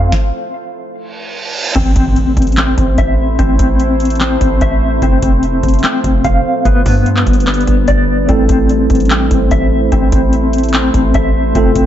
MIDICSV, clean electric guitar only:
0, 0, Header, 1, 2, 480
1, 0, Start_track
1, 0, Key_signature, 0, "minor"
1, 0, Tempo, 408163
1, 145, Time_signature, 4, 2, 24, 8
1, 13949, End_track
2, 0, Start_track
2, 0, Title_t, "Clean electric guitar"
2, 0, Program_c, 0, 27
2, 0, Note_on_c, 0, 60, 81
2, 0, Note_on_c, 0, 77, 92
2, 145, Note_off_c, 0, 77, 0
2, 146, Note_off_c, 0, 60, 0
2, 2064, Note_on_c, 0, 60, 101
2, 2292, Note_off_c, 0, 60, 0
2, 2306, Note_on_c, 0, 60, 80
2, 3018, Note_off_c, 0, 60, 0
2, 3032, Note_on_c, 0, 60, 88
2, 3508, Note_on_c, 0, 76, 96
2, 3972, Note_off_c, 0, 60, 0
2, 3986, Note_on_c, 0, 60, 103
2, 4205, Note_off_c, 0, 60, 0
2, 4220, Note_on_c, 0, 60, 81
2, 4935, Note_off_c, 0, 60, 0
2, 4947, Note_off_c, 0, 76, 0
2, 4949, Note_on_c, 0, 60, 89
2, 5432, Note_on_c, 0, 76, 94
2, 5898, Note_off_c, 0, 60, 0
2, 5908, Note_off_c, 0, 76, 0
2, 5912, Note_on_c, 0, 60, 102
2, 6124, Note_off_c, 0, 60, 0
2, 6139, Note_on_c, 0, 60, 81
2, 6854, Note_off_c, 0, 60, 0
2, 6868, Note_on_c, 0, 60, 83
2, 7345, Note_on_c, 0, 77, 97
2, 7824, Note_on_c, 0, 59, 104
2, 7825, Note_off_c, 0, 77, 0
2, 7827, Note_off_c, 0, 60, 0
2, 8054, Note_off_c, 0, 59, 0
2, 8068, Note_on_c, 0, 59, 76
2, 8775, Note_off_c, 0, 59, 0
2, 8789, Note_on_c, 0, 59, 92
2, 9266, Note_on_c, 0, 74, 95
2, 9745, Note_off_c, 0, 74, 0
2, 9747, Note_off_c, 0, 59, 0
2, 9747, Note_on_c, 0, 60, 99
2, 9973, Note_off_c, 0, 60, 0
2, 9988, Note_on_c, 0, 60, 81
2, 10700, Note_off_c, 0, 60, 0
2, 10714, Note_on_c, 0, 60, 88
2, 11189, Note_on_c, 0, 76, 97
2, 11651, Note_off_c, 0, 60, 0
2, 11666, Note_on_c, 0, 60, 101
2, 11886, Note_off_c, 0, 60, 0
2, 11901, Note_on_c, 0, 60, 82
2, 12615, Note_off_c, 0, 60, 0
2, 12627, Note_off_c, 0, 76, 0
2, 12629, Note_on_c, 0, 60, 85
2, 13112, Note_on_c, 0, 76, 93
2, 13578, Note_off_c, 0, 60, 0
2, 13589, Note_off_c, 0, 76, 0
2, 13592, Note_on_c, 0, 60, 102
2, 13805, Note_off_c, 0, 60, 0
2, 13819, Note_on_c, 0, 60, 81
2, 13949, Note_off_c, 0, 60, 0
2, 13949, End_track
0, 0, End_of_file